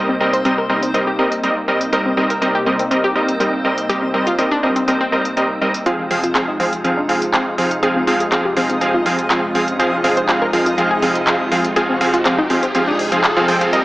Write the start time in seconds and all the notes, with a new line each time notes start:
Already playing: C2 C3 G3 A#3 C4 D#4 A#4 C5 D#5
0.09 C4
0.20 G3 C4 A#4 D#5
0.33 C5, closed hi-hat
0.45 G3 C4 A#4 D#5, closed hi-hat
0.58 A#4
0.69 G3 C4 A#4 D#5
0.83 C4, closed hi-hat
0.94 G3 C4 A#4 D#5, closed hi-hat
1.07 G4
1.19 G3 C4 A#4 D#5
1.32 closed hi-hat
1.43 G3 C4 A#4 D#5, closed hi-hat
1.68 G3 C4 A#4 D#5
1.81 closed hi-hat
1.93 G3 C4 A#4 D#5, closed hi-hat
2.06 C4
2.17 G3 C4 A#4 D#5
2.30 A#4, closed hi-hat
2.42 G3 C4 A#4 D#5, closed hi-hat
2.55 G4
2.66 G3 C4 A#4 D#5
2.79 C4, closed hi-hat
2.91 G3 C4 A#4 D#5, closed hi-hat
3.04 G4
3.16 G3 C4 A#4 D#5
3.29 closed hi-hat
3.40 G3 C4 A#4 D#5, closed hi-hat
3.65 G3 C4 A#4 D#5
3.78 closed hi-hat
3.89 G3 C4 G4 A#4 D#5, closed hi-hat
4.02 C4
4.14 G3 C4 A#4 D#5
4.27 F4, closed hi-hat
4.39 G3 C4 A#4 D#5, closed hi-hat
4.51 D4
4.63 G3 C4 A#4 D#5
4.76 C4, closed hi-hat
4.88 G3 C4 A#4 D#5, closed hi-hat
5.01 C4
5.12 G3 C4 A#4 D#5
5.25 closed hi-hat
5.37 G3 C4 A#4 D#5, closed hi-hat
5.61 G3 C4 A#4 D#5
5.74 closed hi-hat
5.86 F2 C3 F3 G#3 C4 D#4 F4 G#4 F5 D#6, closed hi-hat, riser
5.99 F3
6.11 F3 C4 G#4 F5, open hi-hat
6.23 F4, closed hi-hat
6.35 F3 C4 G#4 F5, clap, closed hi-hat
6.48 D#4
6.60 F3 C4 G#4 F5, open hi-hat
6.73 F3, closed hi-hat
6.84 F3 C4 G#4 F5, closed hi-hat
6.97 D4
7.09 F3 C4 G#4 F5, open hi-hat
7.22 closed hi-hat
7.33 F3 C4 G#4 F5, clap, closed hi-hat
7.58 F3 C4 G#4 F5, open hi-hat
7.71 closed hi-hat
7.83 F3 C4 G#4 F5, closed hi-hat
7.96 C4
8.07 F3 C4 G#4 F5, open hi-hat
8.20 G#4, closed hi-hat
8.32 F3 C4 G#4 F5, clap, closed hi-hat
8.45 G4
8.57 F3 C4 G#4 F5, open hi-hat
8.70 C4, closed hi-hat
8.81 F3 C4 G#4 F5, closed hi-hat
8.94 F4
9.06 F3 C4 G#4 F5, open hi-hat
9.19 closed hi-hat
9.30 F3 C4 G#4 F5, clap, closed hi-hat
9.55 F3 C4 G#4 F5, open hi-hat
9.68 closed hi-hat
9.79 F3 C4 G#4 C5 F5, closed hi-hat
9.93 F4
10.04 F3 C4 F4 G#4 F5, open hi-hat
10.17 C5, closed hi-hat
10.29 F3 C4 F4 G#4 F5, clap, closed hi-hat
10.42 A#4
10.53 F3 C4 F4 G#4 F5, open hi-hat
10.66 F4, closed hi-hat
10.78 F3 C4 F4 G#4 F5, closed hi-hat
10.91 G#4
11.02 F3 C4 G#4 F5, open hi-hat
11.15 closed hi-hat
11.27 F3 C4 G#4 F5, clap, closed hi-hat
11.52 F3 C4 G#4 F5, open hi-hat
11.65 closed hi-hat
11.76 F3 C4 G#4 F5, closed hi-hat
11.89 C4
12.01 F3 C4 G#4 F5, open hi-hat
12.14 F4, closed hi-hat
12.25 F3 C4 G#4 F5, clap, closed hi-hat
12.38 D#4
12.50 F3 C4 G#4 F5, open hi-hat
12.63 C4, closed hi-hat
12.74 F3 C4 G#4 F5, closed hi-hat
12.88 D4
12.99 open hi-hat
13.12 F3 C4 G#4 F5, closed hi-hat
13.24 clap, closed hi-hat
13.37 F3 C4 G#4 F5
13.48 F3 C4 G#4 G5, open hi-hat
13.61 F3 C4 G#4 F5, closed hi-hat
13.73 C2 G3 A#3 C4 D#4 A#4 D#5, closed hi-hat